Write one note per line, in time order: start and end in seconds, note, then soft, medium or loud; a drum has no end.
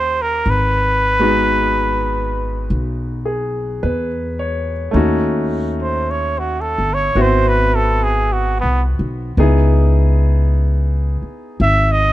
0.00 0.41 D#2 medium
0.00 0.44 A#3 soft
0.00 0.45 C#4 soft
0.00 0.46 F4 soft
0.00 0.47 G4 medium
0.00 0.23 C5 medium
0.22 0.51 A#4 medium
0.46 2.67 G#1 medium
0.50 2.73 B4 medium
1.19 4.94 G#3 soft
1.19 4.94 B3 soft
1.19 4.92 D#4 soft
1.19 4.95 F#4 soft
2.70 3.79 B1 medium
3.25 4.06 G#4 soft
3.83 4.91 E2 medium
3.83 4.72 B4 soft
4.39 5.19 C#5 soft
4.91 6.75 D#2 medium
4.91 7.14 A3 soft
4.91 7.15 C#4 soft
4.91 7.15 D#4 soft
4.96 7.16 F#4 medium
5.83 6.12 C5 medium
6.10 6.40 C#5 medium
6.39 6.62 F#4 medium
6.61 6.95 A4 medium
6.78 7.13 G1 medium
6.94 7.23 C#5 medium
7.15 8.59 G#1 medium
7.15 9.37 B3 soft
7.15 9.38 C4 soft
7.15 9.38 E4 soft
7.15 9.38 F#4 medium
7.22 7.50 C5 medium
7.48 7.76 B4 medium
7.75 8.05 A4 medium
8.03 8.34 G#4 medium
8.33 8.60 F#4 medium
8.60 8.98 C2 medium
8.60 8.84 B3 medium
8.99 9.34 B1 medium
9.37 11.19 C#2 medium
9.37 12.13 B3 soft
9.37 12.13 D#4 soft
9.37 12.13 E4 soft
9.37 12.13 G#4 medium
11.22 muted upright bass stroke soft
11.60 12.13 G#1 medium
11.60 11.93 E5 medium
11.92 12.13 D#5 medium